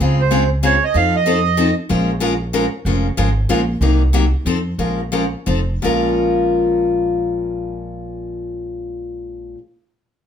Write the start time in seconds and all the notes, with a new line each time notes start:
0.00 C#2 C#3 G#3 C4 F4 G#4
0.21 C5
0.31 C#3 G#3 C4 F4 G#4
0.63 C#3 G#3 C4 F4 G#4 C#5
0.84 D#5
0.94 F2 F3 C4 D#4 A4 F5
1.16 D#5
1.26 F3 C4 D#4 A4
1.57 F3 C4 D#4 A4
1.89 A#1 F3 G#3 C#4 F4 A#4
2.20 F3 G#3 C#4 F4 A#4
2.53 F3 G#3 C#4 F4 A#4
2.85 F1 F3 G#3 C#4 F4 A#4
3.17 G#1 F3 G#3 C#4 F4 A#4
3.49 A#1 F3 G#3 C#4 F4 A#4
3.81 C2 C3 F#3 A#3 D#4 A#4
4.13 C3 F#3 A#3 D#4 A#4
4.45 F2 F3 C4 D#4 A4
4.78 A#1 F3 G#3 C#4 F4 A#4
5.12 F3 G#3 C#4 F4 A#4
5.46 F1 F3 C4 D#4 A4
5.82 A#1 A#2 F3 G#3 C#4 F4 A#4